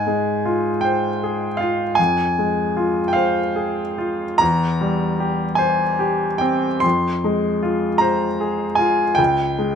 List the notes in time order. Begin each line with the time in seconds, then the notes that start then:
Already playing: G#2 G#5
0.07 G#3
0.45 F4
0.81 C5 G5
1.23 G#4
1.57 F4 F5
1.95 F2 G#5
2.38 G#3
2.77 F4
3.08 G5
3.13 C5 F5
3.56 G#4
3.98 F4
4.38 E2 A#5
4.81 G3
5.20 G4
5.55 C5 G#5
5.99 G4
6.38 C4 G5
6.80 F2 C6
7.24 G#3
7.63 F4
7.98 C5 A#5
8.40 G#4
8.75 F4 G#5
9.15 C#2 G5
9.59 G#3